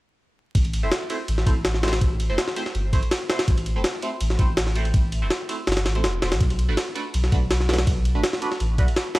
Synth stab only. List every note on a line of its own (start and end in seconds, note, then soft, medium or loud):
0.83 0.88 A3 medium
0.83 0.88 C4 medium
0.83 0.88 E4 medium
0.83 0.88 C5 loud
1.10 1.16 A3 medium
1.10 1.16 C4 medium
1.10 1.16 E4 medium
1.10 1.16 C5 medium
1.47 1.52 A3 medium
1.47 1.52 C4 medium
1.47 1.52 E4 medium
1.47 1.52 C5 medium
1.83 1.92 A3 medium
1.83 1.92 C4 medium
1.83 1.92 E4 medium
1.83 1.92 C5 loud
2.29 2.35 A3 medium
2.29 2.35 C4 medium
2.29 2.35 E4 medium
2.29 2.35 C5 loud
2.56 2.62 A3 medium
2.56 2.62 C4 medium
2.56 2.62 E4 medium
2.56 2.62 C5 loud
2.93 2.99 A3 medium
2.93 2.99 C4 medium
2.93 2.99 E4 medium
2.93 2.99 C5 medium
3.30 3.39 A3 medium
3.30 3.39 C4 medium
3.30 3.39 E4 medium
3.30 3.39 C5 loud
3.76 3.81 A3 medium
3.76 3.81 C4 medium
3.76 3.81 E4 medium
3.76 3.81 C5 loud
4.03 4.09 A3 medium
4.03 4.09 C4 medium
4.03 4.08 E4 medium
4.03 4.08 C5 loud
4.39 4.45 A3 medium
4.39 4.45 C4 medium
4.39 4.45 E4 medium
4.39 4.45 C5 medium
4.76 4.85 A3 medium
4.76 4.85 C4 medium
4.76 4.85 E4 medium
4.76 4.85 C5 loud
5.22 5.27 A3 medium
5.22 5.27 C4 medium
5.22 5.27 E4 medium
5.22 5.27 C5 loud
5.49 5.55 A3 medium
5.49 5.55 C4 medium
5.49 5.55 E4 medium
5.49 5.55 C5 medium
5.95 6.01 A3 medium
5.95 6.00 C4 medium
5.95 6.00 E4 medium
5.95 6.01 C5 medium
6.22 6.31 A3 medium
6.22 6.31 C4 medium
6.22 6.31 E4 medium
6.22 6.31 C5 medium
6.69 6.74 A3 medium
6.69 6.74 D4 medium
6.69 6.74 F#4 medium
6.69 6.74 B4 loud
6.95 7.01 A3 medium
6.95 7.01 D4 medium
6.95 7.01 F#4 medium
6.95 7.01 B4 loud
7.32 7.38 A3 medium
7.32 7.38 D4 medium
7.32 7.38 F#4 medium
7.32 7.38 B4 medium
7.69 7.78 A3 medium
7.69 7.78 D4 medium
7.69 7.78 F#4 medium
7.69 7.78 B4 loud
8.15 8.20 A3 medium
8.15 8.20 D4 medium
8.15 8.20 F#4 medium
8.15 8.20 B4 loud
8.42 8.48 A3 medium
8.42 8.48 D4 medium
8.42 8.48 F#4 medium
8.42 8.48 B4 medium
8.78 8.84 A3 medium
8.78 8.84 D4 medium
8.78 8.84 F#4 medium
8.78 8.84 B4 medium
9.15 9.19 A3 medium
9.15 9.19 D4 medium
9.15 9.19 F#4 medium
9.15 9.19 B4 loud